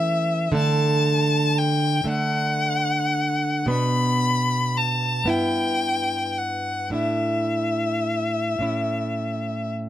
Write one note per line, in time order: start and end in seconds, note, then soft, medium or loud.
0.00 0.51 E3 medium
0.00 0.52 A3 medium
0.00 0.52 C#4 medium
0.00 0.56 E5 loud
0.52 2.02 D3 medium
0.52 2.03 A3 medium
0.52 2.04 D4 medium
0.57 1.60 A5 medium
1.58 2.09 G5 medium
2.04 3.65 D3 medium
2.04 3.65 A3 medium
2.04 3.66 D4 soft
2.08 3.69 F#5 loud
3.66 5.22 B2 medium
3.66 5.23 B3 medium
3.66 5.24 D4 medium
3.66 4.78 B5 loud
4.77 5.30 A5 medium
5.24 6.89 G2 medium
5.24 6.89 B3 soft
5.24 6.90 E4 medium
5.29 6.40 G5 medium
6.38 6.94 F#5 medium
6.90 8.57 A2 medium
6.90 8.58 D4 soft
6.90 8.59 E4 medium
6.95 9.72 E5 medium
8.59 9.89 A2 medium
8.59 9.89 C#4 soft
8.59 9.89 E4 soft